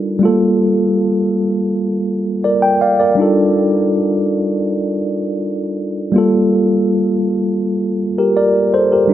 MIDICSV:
0, 0, Header, 1, 2, 480
1, 0, Start_track
1, 0, Key_signature, -2, "minor"
1, 0, Tempo, 740741
1, 135, Time_signature, 4, 2, 24, 8
1, 5921, End_track
2, 0, Start_track
2, 0, Title_t, "Tine electric piano"
2, 0, Program_c, 0, 4
2, 0, Control_c, 0, 64, 127
2, 0, Note_on_c, 0, 55, 80
2, 0, Note_on_c, 0, 62, 68
2, 0, Note_on_c, 0, 63, 73
2, 0, Note_on_c, 0, 65, 68
2, 0, Note_on_c, 0, 69, 85
2, 104, Note_off_c, 0, 55, 0
2, 109, Note_off_c, 0, 62, 0
2, 115, Note_off_c, 0, 63, 0
2, 120, Note_off_c, 0, 65, 0
2, 124, Note_off_c, 0, 69, 0
2, 124, Note_on_c, 0, 55, 77
2, 137, Note_on_c, 0, 57, 56
2, 145, Control_c, 0, 64, 0
2, 150, Note_on_c, 0, 65, 71
2, 164, Note_on_c, 0, 69, 82
2, 179, Note_off_c, 0, 57, 0
2, 179, Note_on_c, 0, 58, 72
2, 237, Control_c, 0, 64, 127
2, 1564, Note_off_c, 0, 69, 0
2, 1583, Note_on_c, 0, 74, 64
2, 1587, Note_on_c, 0, 70, 54
2, 1693, Note_off_c, 0, 74, 0
2, 1696, Note_off_c, 0, 70, 0
2, 1700, Note_on_c, 0, 79, 76
2, 1812, Note_off_c, 0, 79, 0
2, 1823, Note_on_c, 0, 77, 70
2, 1827, Note_on_c, 0, 74, 60
2, 1933, Note_off_c, 0, 74, 0
2, 1934, Note_off_c, 0, 77, 0
2, 1941, Note_on_c, 0, 74, 66
2, 1947, Note_on_c, 0, 70, 54
2, 2024, Note_off_c, 0, 55, 0
2, 2037, Note_off_c, 0, 65, 0
2, 2042, Note_on_c, 0, 55, 74
2, 2052, Note_off_c, 0, 58, 0
2, 2053, Note_on_c, 0, 62, 70
2, 2062, Note_on_c, 0, 63, 69
2, 2065, Control_c, 0, 64, 0
2, 2073, Note_on_c, 0, 65, 70
2, 2084, Note_on_c, 0, 69, 82
2, 2161, Control_c, 0, 64, 127
2, 2166, Note_off_c, 0, 74, 0
2, 2169, Note_off_c, 0, 70, 0
2, 3943, Note_off_c, 0, 55, 0
2, 3948, Note_off_c, 0, 62, 0
2, 3953, Note_off_c, 0, 63, 0
2, 3958, Note_off_c, 0, 65, 0
2, 3964, Note_off_c, 0, 69, 0
2, 3965, Note_on_c, 0, 55, 76
2, 3978, Note_on_c, 0, 58, 69
2, 3985, Control_c, 0, 64, 0
2, 3992, Note_on_c, 0, 65, 68
2, 4006, Note_on_c, 0, 69, 82
2, 4084, Control_c, 0, 64, 127
2, 5167, Note_off_c, 0, 69, 0
2, 5303, Note_on_c, 0, 70, 64
2, 5306, Note_on_c, 0, 67, 59
2, 5414, Note_off_c, 0, 70, 0
2, 5415, Note_off_c, 0, 67, 0
2, 5422, Note_on_c, 0, 74, 76
2, 5425, Note_on_c, 0, 70, 63
2, 5647, Note_off_c, 0, 74, 0
2, 5648, Note_off_c, 0, 70, 0
2, 5662, Note_on_c, 0, 72, 76
2, 5665, Note_on_c, 0, 69, 60
2, 5773, Note_off_c, 0, 72, 0
2, 5775, Note_off_c, 0, 69, 0
2, 5782, Note_on_c, 0, 70, 68
2, 5786, Note_on_c, 0, 67, 57
2, 5865, Note_off_c, 0, 55, 0
2, 5871, Note_off_c, 0, 58, 0
2, 5878, Note_off_c, 0, 65, 0
2, 5881, Note_on_c, 0, 55, 78
2, 5891, Note_on_c, 0, 62, 67
2, 5899, Note_on_c, 0, 63, 72
2, 5903, Control_c, 0, 64, 0
2, 5921, Note_off_c, 0, 55, 0
2, 5921, Note_off_c, 0, 62, 0
2, 5921, Note_off_c, 0, 63, 0
2, 5921, Note_off_c, 0, 67, 0
2, 5921, Note_off_c, 0, 70, 0
2, 5921, End_track
0, 0, End_of_file